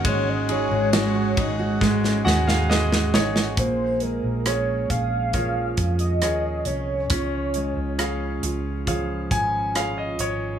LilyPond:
<<
  \new Staff \with { instrumentName = "Soft synth lead" } { \time 4/4 \key bes \minor \tempo 4 = 68 des''16 ees''16 des''2 r4. | c''8 bes'8 des''8 f''4~ f''16 ees''8. des''8~ | des''4. r2 r8 | }
  \new Staff \with { instrumentName = "Grand piano" } { \time 4/4 \key bes \minor << { r2 r8 ges''16 f''16 ees''8 des''8 | r1 | r2 r8 aes''8 f''16 ees''16 des''8 | } \\ { aes8 ees'8 ges'8 ees'8 aes8 ges'8 aes8 ees'8 | bes4 <aes' bes' des''>4 <aes' bes' des''>4 <aes' bes' des''>4 | des'4 <aes' des'' f''>4 <aes' des'' f''>4 <aes' des''>4 | } >> }
  \new Staff \with { instrumentName = "Steel-string acoustic guitar" } { \time 4/4 \key bes \minor aes,16 des'16 aes'16 ges'16 aes'16 ges'16 aes'16 ges'16 aes,16 des'16 aes'16 ges'16 aes'16 ges'16 aes'16 ges'16 | <bes, aes'>8 aes8 des'8 aes'8 f8 des'8 aes'8 des'8 | <des f'>8 aes8 des'8 f'8 f8 des'8 f'8 des'8 | }
  \new Staff \with { instrumentName = "Analog synth pad" } { \time 4/4 \key bes \minor << { ges'2 aes'2 | r1 | r1 | } \\ { <aes des'>1 | r1 | r1 | } >> }
  \new Staff \with { instrumentName = "Fingered electric bass" } { \clef bass \time 4/4 \key bes \minor aes,,8. aes,,8. aes,,4 ees,4 aes,,8 | bes,,8. bes,,8. bes,,4 f,8 ees,8 c,8 | des,8. des,8. des,4 aes,,4 aes,,8 | }
  \new DrumStaff \with { instrumentName = "Drums" } \drummode { \time 4/4 <bd cymr>8 cymr8 <cymr sn>8 <bd cymr>8 <bd sn>16 sn16 sn16 sn16 sn16 sn16 sn16 sn16 | <hh bd>8 hh8 <hh ss>8 <hh bd ss>8 <hh bd>8 <hh bd>16 hh16 <hh ss>8 hh8 | <hh bd>8 hh8 <hh ss>8 hh8 <hh bd>8 <hh bd>8 <hh ss>8 hh8 | }
>>